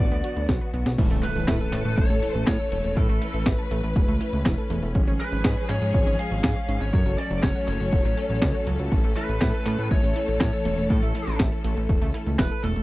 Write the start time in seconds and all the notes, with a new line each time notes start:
Already playing: D3 F#3 B3 F#4 D5
0.00 A1
0.12 D2 B3, closed hi-hat, tambourine
0.24 F#4, closed hi-hat, tambourine
0.36 D2 B3, closed hi-hat, tambourine
0.49 B1 F#4, kick, snare, closed hi-hat, tambourine
0.61 B4, closed hi-hat, tambourine
0.73 B1 B3, closed hi-hat, tambourine
0.86 B1 B3, snare, closed hi-hat, tambourine
0.98 A1 E3 A3 C#4 A4, kick, closed hi-hat, crash, tambourine, impact
1.11 A1 A3, closed hi-hat, tambourine
1.23 E4 B4, open hi-hat, tambourine
1.35 A1 A3, closed hi-hat, tambourine
1.48 A2 E4, kick, snare, clap, closed hi-hat, tambourine
1.60 A4, closed hi-hat, tambourine
1.73 A2 A3, clap, open hi-hat, tambourine
1.85 A2 A3, closed hi-hat, tambourine
1.97 A1 A3 C#5, kick, closed hi-hat, tambourine
2.10 A1 A3, closed hi-hat, tambourine
2.22 E4, open hi-hat, tambourine
2.35 A1 A3, closed hi-hat, tambourine
2.47 A2 E4 C#5, kick, snare, clap, closed hi-hat, tambourine
2.59 A4, closed hi-hat, tambourine
2.72 E1 A3, open hi-hat, tambourine
2.84 E1 A3, closed hi-hat, tambourine
2.97 A2 A3 A4 B4, kick, closed hi-hat, tambourine
3.09 A1 A3, closed hi-hat, tambourine
3.21 E4, open hi-hat, tambourine
3.34 A1 A3, closed hi-hat, tambourine
3.46 A1 E4, kick, snare, clap, closed hi-hat, tambourine
3.59 A4, closed hi-hat, tambourine
3.71 A1 A3, open hi-hat, tambourine
3.83 A1 A3, closed hi-hat, tambourine
3.96 E1 A3, kick, closed hi-hat, tambourine
4.08 C#2 A3, closed hi-hat, tambourine
4.21 E4, open hi-hat, tambourine
4.33 C#2 A3, closed hi-hat, tambourine
4.45 E1 E4, kick, snare, clap, closed hi-hat, tambourine
4.58 A4, closed hi-hat, tambourine
4.70 E1 A3, open hi-hat, tambourine
4.83 E1 A3, closed hi-hat, tambourine
4.95 G#1 F3 G#3 C#4 G#4, kick, closed hi-hat, tambourine
5.07 G#1 C#4, closed hi-hat, tambourine
5.20 G#4 B4, open hi-hat, tambourine
5.32 G#1 C#4, closed hi-hat, tambourine
5.45 G#2 G#4, kick, snare, clap, closed hi-hat, tambourine
5.57 C#5, closed hi-hat, tambourine
5.69 G#2 C#4 C#5, clap, open hi-hat, tambourine
5.82 G#2 C#4, closed hi-hat, tambourine
5.94 G#1 C#4, kick, closed hi-hat, tambourine
6.06 G#1 C#4, closed hi-hat, tambourine
6.19 G#4 F5, open hi-hat, tambourine
6.31 G#1 C#4, closed hi-hat, tambourine
6.44 G#2 G#4, kick, snare, clap, closed hi-hat, tambourine
6.56 C#5, closed hi-hat, tambourine
6.69 G#1 C#4, open hi-hat, tambourine
6.81 G#1 C#4 C#5, closed hi-hat, tambourine
6.93 F#2 F#3 A3 A4 C#5, kick, closed hi-hat, tambourine
7.06 F#1 F#3, closed hi-hat, tambourine
7.18 C#4 D5, open hi-hat, tambourine
7.30 F#1 F#3, closed hi-hat, tambourine
7.43 F#1 C#4 C#5, kick, snare, clap, closed hi-hat, tambourine
7.55 F#4, closed hi-hat, tambourine
7.68 F#1 F#3 C#5, open hi-hat, tambourine
7.80 F#1 F#3, closed hi-hat, tambourine
7.93 E1 F#3, kick, closed hi-hat, tambourine
8.05 A1 F#3, closed hi-hat, tambourine
8.17 C#4, open hi-hat, tambourine
8.30 A1 F#3, closed hi-hat, tambourine
8.42 C#2 C#4, kick, snare, clap, closed hi-hat, tambourine
8.54 F#4, closed hi-hat, tambourine
8.67 C#2 F#3, open hi-hat, tambourine
8.79 C#2 F#3, closed hi-hat, tambourine
8.92 A1 E3 A3, kick, closed hi-hat, tambourine
9.04 A1 A3, closed hi-hat, tambourine
9.16 E4 B4, open hi-hat, tambourine
9.29 A1 A3, closed hi-hat, tambourine
9.41 A2 E4, kick, snare, clap, closed hi-hat, tambourine
9.54 A4, closed hi-hat, tambourine
9.66 A2 A3, clap, open hi-hat, tambourine
9.78 A2 A3, closed hi-hat, tambourine
9.91 A1 A3 C#5, kick, closed hi-hat, tambourine
10.03 A1 A3, closed hi-hat, tambourine
10.16 E4, open hi-hat, tambourine
10.28 A1 A3, closed hi-hat, tambourine
10.40 A2 E4 C#5, kick, snare, clap, closed hi-hat, tambourine
10.53 A4, closed hi-hat, tambourine
10.65 E1 A3, open hi-hat, tambourine
10.78 E1 A3, closed hi-hat, tambourine
10.90 A2 A3 A4, kick, closed hi-hat, tambourine
11.02 A1 A3, closed hi-hat, tambourine
11.15 E4, open hi-hat, tambourine
11.27 A1 A3, closed hi-hat, tambourine
11.40 A1 E4, kick, snare, clap, closed hi-hat, tambourine
11.52 A4, closed hi-hat, tambourine
11.64 A1 A3, open hi-hat, tambourine
11.77 A1 A3, closed hi-hat, tambourine
11.89 E1 A3, kick, closed hi-hat, tambourine
12.02 C#2 A3, closed hi-hat, tambourine
12.14 E4, open hi-hat, tambourine
12.26 C#2 A3, closed hi-hat, tambourine
12.39 E1 E4 B4, kick, snare, clap, closed hi-hat, tambourine
12.51 A4, closed hi-hat, tambourine
12.64 E1 A3 A4, open hi-hat, tambourine
12.76 E1 A3, closed hi-hat, tambourine